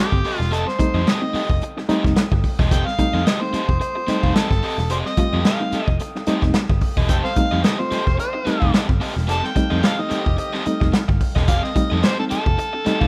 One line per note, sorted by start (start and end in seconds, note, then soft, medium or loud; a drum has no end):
0.00 0.18 C4 medium
0.00 0.13 G4 medium
0.00 0.38 G4 medium
0.00 0.12 A4 medium
0.00 13.07 A4 medium
0.00 0.12 D#5 medium
0.00 13.07 F5 medium
0.00 13.07 G5 medium
0.00 7.06 D#6 medium
0.12 0.22 G1 medium
0.12 muted overdriven electric guitar stroke soft
0.12 kick medium
0.24 0.37 C4 medium
0.24 0.37 G4 medium
0.24 0.37 A4 medium
0.24 0.38 D#5 medium
0.24 open hi-hat medium
0.38 0.52 E1 loud
0.38 0.45 C4 soft
0.38 0.46 D#4 soft
0.38 0.54 F4 medium
0.38 muted overdriven electric guitar stroke soft
0.38 snare soft
0.51 0.64 F1 loud
0.51 0.67 C4 medium
0.51 0.67 G4 medium
0.51 0.66 A4 medium
0.51 0.70 A4 medium
0.51 0.65 D#5 loud
0.51 closed hi-hat medium
0.67 1.09 C5 medium
0.67 muted overdriven electric guitar stroke soft
0.67 snare soft
0.79 1.00 G3 medium
0.79 1.00 A3 medium
0.79 1.00 C4 medium
0.79 1.00 D#4 loud
0.79 muted overdriven electric guitar stroke soft
0.79 muted picked electric bass stroke soft
0.79 kick medium
0.79 closed hi-hat medium
0.94 1.04 F2 loud
0.94 1.05 C4 soft
0.94 1.05 G4 medium
0.94 1.04 A4 medium
0.94 1.04 D#5 medium
1.06 1.22 C4 medium
1.06 1.22 G4 medium
1.06 1.22 A4 medium
1.06 1.62 D#5 medium
1.06 1.21 D#5 medium
1.06 snare loud
1.06 closed hi-hat medium
1.22 1.41 G3 medium
1.22 1.41 A3 medium
1.22 1.41 C4 medium
1.22 1.41 D#4 medium
1.22 muted overdriven electric guitar stroke soft
1.34 1.46 C4 medium
1.34 1.47 G4 medium
1.34 1.47 A4 medium
1.34 1.47 D#5 medium
1.34 muted picked electric bass stroke soft
1.34 open hi-hat soft
1.50 1.59 F1 medium
1.50 muted overdriven electric guitar stroke soft
1.50 kick medium
1.62 1.69 C4 soft
1.62 1.69 D#4 soft
1.62 muted overdriven electric guitar stroke soft
1.62 closed hi-hat medium
1.77 1.83 C4 medium
1.77 1.83 D#4 medium
1.77 muted overdriven electric guitar stroke soft
1.77 snare soft
1.89 2.23 G3 loud
1.89 2.23 A3 loud
1.89 2.23 C4 medium
1.89 2.05 C4 medium
1.89 2.23 D#4 loud
1.89 2.05 G4 medium
1.89 2.04 A4 medium
1.89 2.04 D#5 medium
1.89 muted picked electric bass stroke soft
1.89 closed hi-hat medium
2.04 2.14 F1 medium
2.04 muted overdriven electric guitar stroke soft
2.04 kick medium
2.04 snare soft
2.16 muted overdriven electric guitar stroke soft
2.16 snare loud
2.16 closed hi-hat medium
2.32 2.41 G1 medium
2.32 muted overdriven electric guitar stroke soft
2.32 kick medium
2.44 kick medium
2.44 open hi-hat medium
2.59 2.72 E1 medium
2.59 2.65 C4 soft
2.59 2.70 C4 medium
2.59 2.65 D#4 soft
2.59 2.71 G4 medium
2.59 2.71 A4 medium
2.59 2.72 D#5 medium
2.59 kick loud
2.59 snare soft
2.71 2.83 F1 loud
2.71 2.87 C4 medium
2.71 2.87 G4 medium
2.71 2.86 A4 medium
2.71 2.85 D#5 medium
2.71 2.87 G5 loud
2.71 kick loud
2.71 closed hi-hat medium
2.86 3.28 F5 loud
2.86 muted overdriven electric guitar stroke soft
2.86 snare soft
2.98 3.19 G3 medium
2.98 3.19 A3 medium
2.98 3.19 C4 medium
2.98 3.19 D#4 loud
2.98 muted picked electric bass stroke soft
2.98 muted overdriven electric guitar stroke soft
2.98 kick medium
2.98 closed hi-hat medium
3.13 3.23 F2 loud
3.13 3.24 C4 soft
3.13 3.24 G4 soft
3.13 3.24 A4 medium
3.13 3.23 D#5 medium
3.26 3.42 C4 medium
3.26 3.41 G4 loud
3.26 3.40 A4 loud
3.26 3.43 D#5 medium
3.26 3.40 D#5 loud
3.26 snare loud
3.26 closed hi-hat medium
3.41 3.60 G3 medium
3.41 3.60 A3 medium
3.41 3.60 C4 medium
3.41 3.60 D#4 medium
3.41 3.79 C5 loud
3.41 muted overdriven electric guitar stroke soft
3.53 3.65 C4 medium
3.53 3.66 G4 medium
3.53 3.66 A4 medium
3.53 3.67 D#5 medium
3.53 muted picked electric bass stroke soft
3.53 closed hi-hat medium
3.68 3.78 F1 medium
3.68 muted overdriven electric guitar stroke soft
3.68 kick medium
3.80 3.88 C4 soft
3.80 3.88 D#4 soft
3.80 4.37 C5 medium
3.80 muted overdriven electric guitar stroke soft
3.80 closed hi-hat medium
3.95 4.02 C4 medium
3.95 4.02 F4 medium
3.95 muted overdriven electric guitar stroke soft
4.07 4.42 G3 medium
4.07 4.42 A3 medium
4.07 4.20 C4 medium
4.07 4.42 C4 medium
4.07 4.42 D#4 medium
4.07 4.21 G4 medium
4.07 4.21 A4 medium
4.07 4.21 D#5 medium
4.07 muted picked electric bass stroke soft
4.07 snare soft
4.07 closed hi-hat medium
4.23 4.33 F1 medium
4.23 4.34 C4 medium
4.23 4.34 G4 medium
4.23 4.33 A4 medium
4.23 4.33 F5 medium
4.23 kick medium
4.35 4.51 C4 medium
4.35 4.50 G4 medium
4.35 4.90 A4 medium
4.35 4.50 A4 medium
4.35 4.49 D#5 medium
4.35 snare loud
4.35 closed hi-hat medium
4.50 4.60 G1 medium
4.50 muted overdriven electric guitar stroke medium
4.50 kick medium
4.50 snare soft
4.63 4.75 C4 medium
4.63 4.76 G4 medium
4.63 4.76 A4 medium
4.63 4.76 D#5 medium
4.63 open hi-hat medium
4.78 4.90 E1 medium
4.78 4.84 C4 soft
4.78 4.84 D#4 soft
4.78 muted overdriven electric guitar stroke soft
4.78 snare soft
4.90 5.02 F1 loud
4.90 5.11 C4 medium
4.90 5.06 G4 medium
4.90 5.05 A4 medium
4.90 4.98 C5 medium
4.90 5.05 D#5 loud
4.90 closed hi-hat medium
5.06 5.43 D#5 loud
5.06 muted overdriven electric guitar stroke soft
5.06 snare soft
5.17 5.39 G3 medium
5.17 5.39 A3 medium
5.17 5.39 C4 medium
5.17 5.39 F4 medium
5.17 muted picked electric bass stroke soft
5.17 muted overdriven electric guitar stroke soft
5.17 kick loud
5.17 closed hi-hat medium
5.33 5.43 F2 loud
5.33 5.44 C4 soft
5.33 5.44 G4 medium
5.33 5.43 A4 medium
5.33 5.43 D#5 medium
5.45 5.61 C4 medium
5.45 5.61 G4 medium
5.45 5.61 A4 loud
5.45 5.60 D#5 loud
5.45 5.97 F5 medium
5.45 snare loud
5.45 closed hi-hat medium
5.60 5.80 G3 medium
5.60 5.80 A3 medium
5.60 5.79 C4 medium
5.60 5.80 D#4 medium
5.60 muted overdriven electric guitar stroke soft
5.72 5.85 C4 medium
5.72 5.85 G4 medium
5.72 5.86 A4 medium
5.72 5.86 D#5 medium
5.72 muted picked electric bass stroke soft
5.72 closed hi-hat medium
5.88 5.97 F1 medium
5.88 muted overdriven electric guitar stroke soft
5.88 kick medium
6.00 6.07 C4 soft
6.00 6.08 D#4 soft
6.00 muted overdriven electric guitar stroke soft
6.00 closed hi-hat medium
6.15 6.21 C4 medium
6.15 6.21 D#4 medium
6.15 muted overdriven electric guitar stroke soft
6.15 snare soft
6.27 6.61 G3 loud
6.27 6.61 A3 medium
6.27 6.61 C4 medium
6.27 6.43 C4 medium
6.27 6.61 D#4 loud
6.27 6.44 G4 medium
6.27 6.43 A4 medium
6.27 6.42 D#5 medium
6.27 muted picked electric bass stroke soft
6.27 closed hi-hat medium
6.42 6.52 F1 medium
6.42 muted overdriven electric guitar stroke soft
6.42 kick medium
6.42 snare soft
6.54 muted overdriven electric guitar stroke soft
6.54 snare loud
6.54 closed hi-hat medium
6.70 6.79 G1 medium
6.70 muted overdriven electric guitar stroke soft
6.70 kick loud
6.81 kick medium
6.81 open hi-hat medium
6.97 7.09 E1 medium
6.97 7.04 C4 soft
6.97 7.08 C4 medium
6.97 7.04 D#4 soft
6.97 7.09 G4 medium
6.97 7.10 A4 medium
6.97 7.10 D#5 medium
6.97 kick medium
7.09 7.21 F1 loud
7.09 7.31 D#3 loud
7.09 7.31 C4 loud
7.09 7.25 C4 medium
7.09 7.25 G4 medium
7.09 7.31 A4 loud
7.09 7.24 A4 medium
7.09 7.23 D#5 medium
7.09 7.16 G5 loud
7.09 13.07 F6 medium
7.09 kick loud
7.09 closed hi-hat medium
7.24 7.33 C5 medium
7.24 7.61 F5 loud
7.24 muted overdriven electric guitar stroke soft
7.24 snare soft
7.35 7.58 G3 medium
7.35 7.58 A3 medium
7.35 7.58 C4 medium
7.35 7.58 D#4 loud
7.35 muted overdriven electric guitar stroke soft
7.35 muted picked electric bass stroke soft
7.35 kick loud
7.35 closed hi-hat medium
7.51 7.62 F2 loud
7.51 7.62 A3 medium
7.51 7.62 C4 soft
7.51 7.62 G4 medium
7.51 7.62 A4 medium
7.51 7.62 C5 medium
7.51 7.61 D#5 medium
7.63 7.73 D#3 medium
7.63 7.79 C4 medium
7.63 7.73 C4 medium
7.63 7.79 G4 medium
7.63 7.73 A4 loud
7.63 7.78 A4 medium
7.63 7.82 D#5 medium
7.63 7.78 D#5 medium
7.63 snare loud
7.63 closed hi-hat medium
7.79 7.99 G3 medium
7.79 7.99 A3 medium
7.79 7.99 C4 medium
7.79 7.99 F4 medium
7.79 8.19 C5 medium
7.79 muted overdriven electric guitar stroke soft
7.91 8.43 A3 loud
7.91 8.04 C4 medium
7.91 8.43 G4 medium
7.91 8.04 G4 medium
7.91 8.04 A4 medium
7.91 8.43 C5 loud
7.91 8.05 D#5 medium
7.91 muted picked electric bass stroke soft
7.91 closed hi-hat medium
8.06 8.17 F1 medium
8.06 muted overdriven electric guitar stroke soft
8.06 kick medium
8.18 8.27 C4 soft
8.18 8.27 D#4 soft
8.18 8.71 C5 medium
8.18 muted overdriven electric guitar stroke soft
8.18 closed hi-hat medium
8.33 8.40 C4 medium
8.33 8.41 D#4 medium
8.33 muted overdriven electric guitar stroke soft
8.45 8.80 G3 medium
8.45 8.80 A3 medium
8.45 8.58 C4 medium
8.45 8.80 C4 medium
8.45 8.80 D#4 medium
8.45 8.59 G4 medium
8.45 8.59 A4 medium
8.45 8.59 D#5 medium
8.45 muted picked electric bass stroke soft
8.45 snare soft
8.45 closed hi-hat medium
8.60 8.71 F1 medium
8.60 8.71 C4 medium
8.60 8.71 G4 medium
8.60 8.71 A4 medium
8.60 8.71 F5 medium
8.60 kick medium
8.73 8.89 C4 medium
8.73 8.88 G4 medium
8.73 8.88 A4 medium
8.73 8.87 D#5 medium
8.73 snare loud
8.73 closed hi-hat medium
8.88 8.99 G1 medium
8.88 muted overdriven electric guitar stroke medium
8.88 kick loud
9.00 9.13 C4 medium
9.00 9.14 G4 medium
9.00 9.14 A4 medium
9.00 9.14 D#5 medium
9.00 open hi-hat medium
9.15 9.29 E1 medium
9.15 9.23 C4 soft
9.15 9.23 D#4 soft
9.15 muted overdriven electric guitar stroke medium
9.15 snare soft
9.27 9.41 F1 medium
9.27 9.50 D#3 loud
9.27 9.49 C4 medium
9.27 9.50 C4 medium
9.27 9.43 G4 loud
9.27 9.50 A4 loud
9.27 9.43 A4 medium
9.27 9.42 D#5 loud
9.27 9.47 A5 loud
9.27 closed hi-hat medium
9.43 9.86 G5 loud
9.43 muted overdriven electric guitar stroke soft
9.43 snare soft
9.55 9.77 G3 medium
9.55 9.77 A3 medium
9.55 9.77 C4 medium
9.55 9.77 D#4 loud
9.55 muted overdriven electric guitar stroke soft
9.55 muted picked electric bass stroke soft
9.55 kick medium
9.55 closed hi-hat medium
9.70 9.81 F2 loud
9.70 9.81 A3 medium
9.70 9.81 C4 soft
9.70 9.81 G4 medium
9.70 9.81 A4 medium
9.70 9.81 C5 medium
9.70 9.81 D#5 medium
9.82 9.92 D#3 medium
9.82 9.99 C4 medium
9.82 9.92 C4 medium
9.82 9.98 G4 medium
9.82 9.92 A4 medium
9.82 9.98 A4 medium
9.82 9.97 D#5 medium
9.82 10.02 F5 medium
9.82 snare loud
9.82 closed hi-hat medium
9.98 10.18 G3 medium
9.98 10.18 A3 medium
9.98 10.18 C4 medium
9.98 10.18 D#4 medium
9.98 10.38 D#5 loud
9.98 muted overdriven electric guitar stroke soft
10.09 10.62 D#3 loud
10.09 10.22 C4 medium
10.09 10.63 C4 medium
10.09 10.23 G4 medium
10.09 10.62 G4 loud
10.09 10.23 A4 medium
10.09 10.23 D#5 medium
10.09 muted picked electric bass stroke soft
10.09 closed hi-hat medium
10.25 10.36 F1 medium
10.25 muted overdriven electric guitar stroke soft
10.25 kick medium
10.37 10.46 C4 soft
10.37 10.46 D#4 soft
10.37 10.90 D#5 medium
10.37 muted overdriven electric guitar stroke soft
10.37 closed hi-hat medium
10.53 10.60 C4 medium
10.53 10.64 C4 medium
10.53 10.60 D#4 medium
10.53 10.65 G4 medium
10.53 10.65 A4 medium
10.53 10.66 D#5 medium
10.53 snare soft
10.66 11.00 G3 medium
10.66 11.00 A3 medium
10.66 11.00 C4 medium
10.66 11.00 D#4 medium
10.66 muted overdriven electric guitar stroke medium
10.66 muted picked electric bass stroke soft
10.66 closed hi-hat medium
10.80 10.91 F1 medium
10.80 muted overdriven electric guitar stroke soft
10.80 kick medium
10.80 snare soft
10.93 muted overdriven electric guitar stroke soft
10.93 muted picked electric bass stroke soft
10.93 snare loud
10.93 closed hi-hat medium
11.08 11.18 G1 medium
11.08 muted overdriven electric guitar stroke soft
11.08 kick loud
11.21 kick medium
11.21 open hi-hat medium
11.35 11.48 E1 loud
11.35 11.42 C4 soft
11.35 11.47 C4 medium
11.35 11.42 D4 soft
11.35 11.47 G4 medium
11.35 11.48 A4 medium
11.35 11.48 D#5 medium
11.35 kick medium
11.35 snare soft
11.48 11.60 F1 loud
11.48 11.69 C4 medium
11.48 11.63 G4 loud
11.48 11.63 A4 medium
11.48 11.62 D#5 loud
11.48 11.65 F5 medium
11.48 kick loud
11.48 closed hi-hat medium
11.63 12.06 D#5 medium
11.63 muted overdriven electric guitar stroke medium
11.63 snare soft
11.75 11.97 G3 loud
11.75 11.97 A3 medium
11.75 11.97 C4 medium
11.75 11.97 D#4 loud
11.75 muted overdriven electric guitar stroke soft
11.75 muted picked electric bass stroke soft
11.75 kick medium
11.75 closed hi-hat medium
11.90 12.01 F2 loud
11.90 12.01 C4 soft
11.90 12.01 G4 soft
11.90 12.01 A4 medium
11.90 12.00 D#5 medium
12.02 12.23 C4 medium
12.02 12.18 G4 medium
12.02 12.18 A4 loud
12.02 12.19 C5 loud
12.02 12.17 D#5 medium
12.02 snare loud
12.02 closed hi-hat medium
12.18 12.38 G3 medium
12.18 12.38 A3 medium
12.18 12.38 C4 medium
12.18 12.38 D#4 medium
12.18 12.25 A4 medium
12.18 muted overdriven electric guitar stroke soft
12.30 12.42 C4 medium
12.30 12.43 G4 medium
12.30 12.43 A4 medium
12.30 13.07 A4 loud
12.30 12.44 D#5 medium
12.30 muted picked electric bass stroke soft
12.30 closed hi-hat medium
12.45 12.56 F1 medium
12.45 muted overdriven electric guitar stroke soft
12.45 kick medium
12.58 12.66 C4 soft
12.58 12.66 D#4 soft
12.58 muted overdriven electric guitar stroke soft
12.58 closed hi-hat medium
12.73 12.79 C4 medium
12.73 12.79 D4 medium
12.73 muted overdriven electric guitar stroke soft
12.85 13.07 G3 medium
12.85 13.07 A3 medium
12.85 12.98 C4 medium
12.85 13.07 C4 medium
12.85 13.07 D#4 loud
12.85 12.98 G4 medium
12.85 12.98 A4 medium
12.85 12.99 D#5 medium
12.85 muted picked electric bass stroke soft
12.85 snare soft
12.85 closed hi-hat medium
13.00 13.07 F1 medium
13.00 13.07 C4 medium
13.00 13.07 G4 medium
13.00 13.07 A4 medium
13.00 13.07 F5 medium
13.00 kick medium